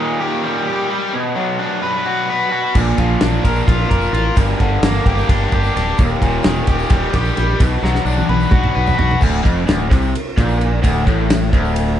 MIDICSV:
0, 0, Header, 1, 4, 480
1, 0, Start_track
1, 0, Tempo, 461538
1, 1184, Time_signature, 7, 3, 24, 8
1, 12477, End_track
2, 0, Start_track
2, 0, Title_t, "Overdriven electric guitar"
2, 0, Program_c, 0, 29
2, 0, Note_on_c, 0, 39, 77
2, 0, Note_on_c, 0, 46, 74
2, 0, Note_on_c, 0, 51, 71
2, 211, Note_on_c, 0, 67, 76
2, 458, Note_on_c, 0, 55, 71
2, 692, Note_off_c, 0, 67, 0
2, 703, Note_off_c, 0, 39, 0
2, 704, Note_on_c, 0, 67, 68
2, 926, Note_off_c, 0, 55, 0
2, 939, Note_off_c, 0, 46, 0
2, 939, Note_on_c, 0, 55, 71
2, 1181, Note_off_c, 0, 55, 0
2, 1182, Note_off_c, 0, 51, 0
2, 1182, Note_on_c, 0, 47, 79
2, 1184, Note_off_c, 0, 67, 0
2, 1410, Note_on_c, 0, 54, 69
2, 1652, Note_on_c, 0, 62, 68
2, 1896, Note_on_c, 0, 71, 75
2, 2141, Note_on_c, 0, 66, 70
2, 2376, Note_off_c, 0, 71, 0
2, 2384, Note_off_c, 0, 47, 0
2, 2389, Note_on_c, 0, 71, 65
2, 2604, Note_off_c, 0, 66, 0
2, 2617, Note_on_c, 0, 66, 69
2, 2618, Note_off_c, 0, 54, 0
2, 2861, Note_off_c, 0, 66, 0
2, 2867, Note_off_c, 0, 71, 0
2, 2870, Note_on_c, 0, 46, 77
2, 3106, Note_on_c, 0, 53, 70
2, 3342, Note_off_c, 0, 62, 0
2, 3346, Note_on_c, 0, 62, 69
2, 3577, Note_on_c, 0, 70, 73
2, 3816, Note_on_c, 0, 65, 74
2, 4056, Note_off_c, 0, 70, 0
2, 4060, Note_on_c, 0, 70, 72
2, 4068, Note_off_c, 0, 46, 0
2, 4285, Note_off_c, 0, 65, 0
2, 4298, Note_on_c, 0, 65, 73
2, 4306, Note_off_c, 0, 53, 0
2, 4537, Note_on_c, 0, 43, 73
2, 4542, Note_off_c, 0, 65, 0
2, 4546, Note_off_c, 0, 62, 0
2, 4783, Note_on_c, 0, 50, 72
2, 5028, Note_on_c, 0, 58, 74
2, 5264, Note_off_c, 0, 70, 0
2, 5269, Note_on_c, 0, 67, 81
2, 5508, Note_on_c, 0, 62, 73
2, 5741, Note_off_c, 0, 43, 0
2, 5745, Note_off_c, 0, 67, 0
2, 5757, Note_on_c, 0, 67, 72
2, 5977, Note_off_c, 0, 62, 0
2, 5984, Note_off_c, 0, 50, 0
2, 5989, Note_on_c, 0, 62, 69
2, 6226, Note_off_c, 0, 58, 0
2, 6227, Note_off_c, 0, 62, 0
2, 6230, Note_on_c, 0, 39, 82
2, 6231, Note_off_c, 0, 67, 0
2, 6472, Note_on_c, 0, 46, 70
2, 6713, Note_on_c, 0, 51, 74
2, 6943, Note_on_c, 0, 67, 80
2, 7192, Note_on_c, 0, 55, 70
2, 7427, Note_off_c, 0, 39, 0
2, 7430, Note_off_c, 0, 67, 0
2, 7443, Note_on_c, 0, 67, 73
2, 7657, Note_off_c, 0, 55, 0
2, 7668, Note_off_c, 0, 46, 0
2, 7669, Note_on_c, 0, 55, 74
2, 7904, Note_on_c, 0, 47, 78
2, 7906, Note_off_c, 0, 55, 0
2, 7908, Note_off_c, 0, 51, 0
2, 7913, Note_off_c, 0, 67, 0
2, 8145, Note_on_c, 0, 54, 75
2, 8378, Note_on_c, 0, 62, 77
2, 8624, Note_on_c, 0, 71, 76
2, 8854, Note_on_c, 0, 66, 73
2, 9089, Note_off_c, 0, 71, 0
2, 9102, Note_on_c, 0, 71, 66
2, 9103, Note_off_c, 0, 47, 0
2, 9325, Note_off_c, 0, 66, 0
2, 9337, Note_on_c, 0, 66, 76
2, 9343, Note_off_c, 0, 54, 0
2, 9569, Note_on_c, 0, 38, 109
2, 9580, Note_off_c, 0, 62, 0
2, 9580, Note_off_c, 0, 66, 0
2, 9582, Note_off_c, 0, 71, 0
2, 9805, Note_off_c, 0, 38, 0
2, 9809, Note_on_c, 0, 41, 107
2, 10047, Note_off_c, 0, 41, 0
2, 10051, Note_on_c, 0, 38, 105
2, 10289, Note_off_c, 0, 38, 0
2, 10296, Note_on_c, 0, 48, 102
2, 10532, Note_off_c, 0, 48, 0
2, 10789, Note_on_c, 0, 46, 94
2, 11253, Note_off_c, 0, 46, 0
2, 11257, Note_on_c, 0, 38, 109
2, 11492, Note_off_c, 0, 38, 0
2, 11506, Note_on_c, 0, 45, 104
2, 11976, Note_off_c, 0, 45, 0
2, 11980, Note_on_c, 0, 38, 100
2, 12477, Note_off_c, 0, 38, 0
2, 12477, End_track
3, 0, Start_track
3, 0, Title_t, "Fingered electric bass"
3, 0, Program_c, 1, 33
3, 2865, Note_on_c, 1, 34, 94
3, 3029, Note_off_c, 1, 34, 0
3, 3108, Note_on_c, 1, 34, 86
3, 3271, Note_off_c, 1, 34, 0
3, 3351, Note_on_c, 1, 34, 94
3, 3513, Note_off_c, 1, 34, 0
3, 3585, Note_on_c, 1, 34, 91
3, 3749, Note_off_c, 1, 34, 0
3, 3826, Note_on_c, 1, 34, 94
3, 3990, Note_off_c, 1, 34, 0
3, 4072, Note_on_c, 1, 29, 88
3, 4234, Note_off_c, 1, 29, 0
3, 4294, Note_on_c, 1, 33, 90
3, 4462, Note_off_c, 1, 33, 0
3, 4543, Note_on_c, 1, 31, 94
3, 4708, Note_off_c, 1, 31, 0
3, 4791, Note_on_c, 1, 31, 83
3, 4953, Note_off_c, 1, 31, 0
3, 5018, Note_on_c, 1, 31, 93
3, 5185, Note_off_c, 1, 31, 0
3, 5257, Note_on_c, 1, 31, 90
3, 5424, Note_off_c, 1, 31, 0
3, 5503, Note_on_c, 1, 31, 92
3, 5668, Note_off_c, 1, 31, 0
3, 5748, Note_on_c, 1, 31, 83
3, 5911, Note_off_c, 1, 31, 0
3, 5996, Note_on_c, 1, 26, 83
3, 6156, Note_off_c, 1, 26, 0
3, 6235, Note_on_c, 1, 27, 101
3, 6396, Note_off_c, 1, 27, 0
3, 6473, Note_on_c, 1, 27, 84
3, 6635, Note_off_c, 1, 27, 0
3, 6721, Note_on_c, 1, 27, 102
3, 6879, Note_off_c, 1, 27, 0
3, 6948, Note_on_c, 1, 27, 84
3, 7111, Note_off_c, 1, 27, 0
3, 7180, Note_on_c, 1, 27, 91
3, 7346, Note_off_c, 1, 27, 0
3, 7429, Note_on_c, 1, 34, 88
3, 7591, Note_off_c, 1, 34, 0
3, 7675, Note_on_c, 1, 34, 87
3, 7836, Note_off_c, 1, 34, 0
3, 7916, Note_on_c, 1, 35, 90
3, 8076, Note_off_c, 1, 35, 0
3, 8137, Note_on_c, 1, 35, 93
3, 8303, Note_off_c, 1, 35, 0
3, 8373, Note_on_c, 1, 35, 95
3, 8540, Note_off_c, 1, 35, 0
3, 8622, Note_on_c, 1, 35, 85
3, 8786, Note_off_c, 1, 35, 0
3, 8857, Note_on_c, 1, 35, 86
3, 9023, Note_off_c, 1, 35, 0
3, 9116, Note_on_c, 1, 35, 92
3, 9275, Note_off_c, 1, 35, 0
3, 9355, Note_on_c, 1, 35, 86
3, 9515, Note_off_c, 1, 35, 0
3, 9589, Note_on_c, 1, 26, 98
3, 9809, Note_off_c, 1, 26, 0
3, 9832, Note_on_c, 1, 29, 88
3, 10051, Note_off_c, 1, 29, 0
3, 10079, Note_on_c, 1, 26, 99
3, 10294, Note_off_c, 1, 26, 0
3, 10305, Note_on_c, 1, 36, 93
3, 10527, Note_off_c, 1, 36, 0
3, 10793, Note_on_c, 1, 34, 96
3, 11234, Note_off_c, 1, 34, 0
3, 11277, Note_on_c, 1, 26, 98
3, 11493, Note_off_c, 1, 26, 0
3, 11515, Note_on_c, 1, 33, 87
3, 11955, Note_off_c, 1, 33, 0
3, 11996, Note_on_c, 1, 26, 95
3, 12477, Note_off_c, 1, 26, 0
3, 12477, End_track
4, 0, Start_track
4, 0, Title_t, "Drums"
4, 2859, Note_on_c, 9, 49, 100
4, 2861, Note_on_c, 9, 54, 84
4, 2863, Note_on_c, 9, 36, 113
4, 2963, Note_off_c, 9, 49, 0
4, 2965, Note_off_c, 9, 54, 0
4, 2967, Note_off_c, 9, 36, 0
4, 3099, Note_on_c, 9, 51, 76
4, 3102, Note_on_c, 9, 36, 80
4, 3203, Note_off_c, 9, 51, 0
4, 3206, Note_off_c, 9, 36, 0
4, 3336, Note_on_c, 9, 51, 107
4, 3338, Note_on_c, 9, 38, 115
4, 3339, Note_on_c, 9, 54, 85
4, 3440, Note_off_c, 9, 51, 0
4, 3442, Note_off_c, 9, 38, 0
4, 3443, Note_off_c, 9, 54, 0
4, 3584, Note_on_c, 9, 36, 82
4, 3586, Note_on_c, 9, 51, 85
4, 3688, Note_off_c, 9, 36, 0
4, 3690, Note_off_c, 9, 51, 0
4, 3696, Note_on_c, 9, 54, 71
4, 3800, Note_off_c, 9, 54, 0
4, 3826, Note_on_c, 9, 36, 115
4, 3833, Note_on_c, 9, 51, 105
4, 3930, Note_off_c, 9, 36, 0
4, 3937, Note_off_c, 9, 51, 0
4, 3951, Note_on_c, 9, 54, 30
4, 4055, Note_off_c, 9, 54, 0
4, 4066, Note_on_c, 9, 36, 75
4, 4067, Note_on_c, 9, 51, 79
4, 4170, Note_off_c, 9, 36, 0
4, 4171, Note_off_c, 9, 51, 0
4, 4171, Note_on_c, 9, 54, 77
4, 4275, Note_off_c, 9, 54, 0
4, 4309, Note_on_c, 9, 51, 83
4, 4413, Note_off_c, 9, 51, 0
4, 4536, Note_on_c, 9, 54, 102
4, 4545, Note_on_c, 9, 36, 108
4, 4547, Note_on_c, 9, 51, 99
4, 4640, Note_off_c, 9, 54, 0
4, 4649, Note_off_c, 9, 36, 0
4, 4651, Note_off_c, 9, 51, 0
4, 4783, Note_on_c, 9, 51, 74
4, 4784, Note_on_c, 9, 36, 74
4, 4887, Note_off_c, 9, 51, 0
4, 4888, Note_off_c, 9, 36, 0
4, 5021, Note_on_c, 9, 51, 101
4, 5023, Note_on_c, 9, 38, 121
4, 5024, Note_on_c, 9, 54, 99
4, 5125, Note_off_c, 9, 51, 0
4, 5127, Note_off_c, 9, 38, 0
4, 5128, Note_off_c, 9, 54, 0
4, 5262, Note_on_c, 9, 36, 86
4, 5263, Note_on_c, 9, 51, 78
4, 5366, Note_off_c, 9, 36, 0
4, 5367, Note_off_c, 9, 51, 0
4, 5392, Note_on_c, 9, 54, 72
4, 5496, Note_off_c, 9, 54, 0
4, 5504, Note_on_c, 9, 36, 115
4, 5505, Note_on_c, 9, 51, 98
4, 5608, Note_off_c, 9, 36, 0
4, 5609, Note_off_c, 9, 51, 0
4, 5622, Note_on_c, 9, 54, 30
4, 5726, Note_off_c, 9, 54, 0
4, 5740, Note_on_c, 9, 51, 69
4, 5745, Note_on_c, 9, 36, 78
4, 5844, Note_off_c, 9, 51, 0
4, 5849, Note_off_c, 9, 36, 0
4, 5858, Note_on_c, 9, 54, 71
4, 5962, Note_off_c, 9, 54, 0
4, 5999, Note_on_c, 9, 51, 71
4, 6001, Note_on_c, 9, 38, 36
4, 6103, Note_off_c, 9, 51, 0
4, 6105, Note_off_c, 9, 38, 0
4, 6213, Note_on_c, 9, 54, 94
4, 6226, Note_on_c, 9, 51, 102
4, 6229, Note_on_c, 9, 36, 115
4, 6317, Note_off_c, 9, 54, 0
4, 6330, Note_off_c, 9, 51, 0
4, 6333, Note_off_c, 9, 36, 0
4, 6467, Note_on_c, 9, 36, 79
4, 6471, Note_on_c, 9, 51, 74
4, 6571, Note_off_c, 9, 36, 0
4, 6575, Note_off_c, 9, 51, 0
4, 6686, Note_on_c, 9, 54, 92
4, 6700, Note_on_c, 9, 51, 97
4, 6702, Note_on_c, 9, 38, 121
4, 6790, Note_off_c, 9, 54, 0
4, 6804, Note_off_c, 9, 51, 0
4, 6806, Note_off_c, 9, 38, 0
4, 6937, Note_on_c, 9, 51, 80
4, 6943, Note_on_c, 9, 36, 82
4, 7041, Note_off_c, 9, 51, 0
4, 7047, Note_off_c, 9, 36, 0
4, 7061, Note_on_c, 9, 54, 74
4, 7165, Note_off_c, 9, 54, 0
4, 7174, Note_on_c, 9, 51, 106
4, 7176, Note_on_c, 9, 38, 37
4, 7182, Note_on_c, 9, 36, 115
4, 7278, Note_off_c, 9, 51, 0
4, 7280, Note_off_c, 9, 38, 0
4, 7286, Note_off_c, 9, 36, 0
4, 7308, Note_on_c, 9, 54, 30
4, 7412, Note_off_c, 9, 54, 0
4, 7421, Note_on_c, 9, 51, 77
4, 7423, Note_on_c, 9, 38, 36
4, 7424, Note_on_c, 9, 36, 79
4, 7525, Note_off_c, 9, 51, 0
4, 7527, Note_off_c, 9, 38, 0
4, 7528, Note_off_c, 9, 36, 0
4, 7541, Note_on_c, 9, 54, 77
4, 7645, Note_off_c, 9, 54, 0
4, 7664, Note_on_c, 9, 51, 85
4, 7667, Note_on_c, 9, 38, 38
4, 7768, Note_off_c, 9, 51, 0
4, 7771, Note_off_c, 9, 38, 0
4, 7905, Note_on_c, 9, 54, 96
4, 7907, Note_on_c, 9, 36, 115
4, 7907, Note_on_c, 9, 51, 111
4, 8009, Note_off_c, 9, 54, 0
4, 8011, Note_off_c, 9, 36, 0
4, 8011, Note_off_c, 9, 51, 0
4, 8161, Note_on_c, 9, 38, 66
4, 8265, Note_off_c, 9, 38, 0
4, 8269, Note_on_c, 9, 38, 59
4, 8271, Note_on_c, 9, 54, 30
4, 8373, Note_off_c, 9, 38, 0
4, 8375, Note_off_c, 9, 54, 0
4, 8382, Note_on_c, 9, 54, 97
4, 8486, Note_off_c, 9, 54, 0
4, 8508, Note_on_c, 9, 48, 63
4, 8612, Note_off_c, 9, 48, 0
4, 8624, Note_on_c, 9, 48, 89
4, 8728, Note_off_c, 9, 48, 0
4, 8735, Note_on_c, 9, 54, 72
4, 8839, Note_off_c, 9, 54, 0
4, 8852, Note_on_c, 9, 47, 93
4, 8861, Note_on_c, 9, 36, 115
4, 8956, Note_off_c, 9, 47, 0
4, 8965, Note_off_c, 9, 36, 0
4, 8983, Note_on_c, 9, 45, 84
4, 9087, Note_off_c, 9, 45, 0
4, 9220, Note_on_c, 9, 54, 75
4, 9231, Note_on_c, 9, 43, 91
4, 9324, Note_off_c, 9, 54, 0
4, 9335, Note_off_c, 9, 43, 0
4, 9343, Note_on_c, 9, 54, 28
4, 9348, Note_on_c, 9, 43, 105
4, 9447, Note_off_c, 9, 54, 0
4, 9452, Note_off_c, 9, 43, 0
4, 9478, Note_on_c, 9, 43, 92
4, 9579, Note_on_c, 9, 54, 91
4, 9582, Note_off_c, 9, 43, 0
4, 9590, Note_on_c, 9, 36, 103
4, 9594, Note_on_c, 9, 49, 118
4, 9683, Note_off_c, 9, 54, 0
4, 9694, Note_off_c, 9, 36, 0
4, 9698, Note_off_c, 9, 49, 0
4, 9831, Note_on_c, 9, 36, 106
4, 9837, Note_on_c, 9, 51, 70
4, 9935, Note_off_c, 9, 36, 0
4, 9941, Note_off_c, 9, 51, 0
4, 10062, Note_on_c, 9, 54, 82
4, 10074, Note_on_c, 9, 51, 94
4, 10076, Note_on_c, 9, 38, 116
4, 10166, Note_off_c, 9, 54, 0
4, 10178, Note_off_c, 9, 51, 0
4, 10180, Note_off_c, 9, 38, 0
4, 10311, Note_on_c, 9, 36, 114
4, 10321, Note_on_c, 9, 51, 82
4, 10323, Note_on_c, 9, 38, 38
4, 10415, Note_off_c, 9, 36, 0
4, 10419, Note_on_c, 9, 54, 70
4, 10425, Note_off_c, 9, 51, 0
4, 10427, Note_off_c, 9, 38, 0
4, 10523, Note_off_c, 9, 54, 0
4, 10560, Note_on_c, 9, 51, 109
4, 10664, Note_off_c, 9, 51, 0
4, 10669, Note_on_c, 9, 54, 27
4, 10773, Note_off_c, 9, 54, 0
4, 10791, Note_on_c, 9, 36, 103
4, 10797, Note_on_c, 9, 51, 73
4, 10800, Note_on_c, 9, 38, 34
4, 10895, Note_off_c, 9, 36, 0
4, 10901, Note_off_c, 9, 51, 0
4, 10904, Note_off_c, 9, 38, 0
4, 10909, Note_on_c, 9, 54, 76
4, 11013, Note_off_c, 9, 54, 0
4, 11035, Note_on_c, 9, 51, 82
4, 11139, Note_off_c, 9, 51, 0
4, 11265, Note_on_c, 9, 54, 97
4, 11272, Note_on_c, 9, 36, 109
4, 11276, Note_on_c, 9, 51, 103
4, 11369, Note_off_c, 9, 54, 0
4, 11376, Note_off_c, 9, 36, 0
4, 11380, Note_off_c, 9, 51, 0
4, 11512, Note_on_c, 9, 36, 105
4, 11521, Note_on_c, 9, 51, 79
4, 11616, Note_off_c, 9, 36, 0
4, 11625, Note_off_c, 9, 51, 0
4, 11751, Note_on_c, 9, 54, 92
4, 11755, Note_on_c, 9, 51, 105
4, 11757, Note_on_c, 9, 38, 121
4, 11855, Note_off_c, 9, 54, 0
4, 11859, Note_off_c, 9, 51, 0
4, 11861, Note_off_c, 9, 38, 0
4, 11991, Note_on_c, 9, 36, 108
4, 12000, Note_on_c, 9, 51, 81
4, 12095, Note_off_c, 9, 36, 0
4, 12104, Note_off_c, 9, 51, 0
4, 12114, Note_on_c, 9, 54, 72
4, 12218, Note_off_c, 9, 54, 0
4, 12231, Note_on_c, 9, 51, 104
4, 12335, Note_off_c, 9, 51, 0
4, 12364, Note_on_c, 9, 54, 28
4, 12468, Note_off_c, 9, 54, 0
4, 12477, End_track
0, 0, End_of_file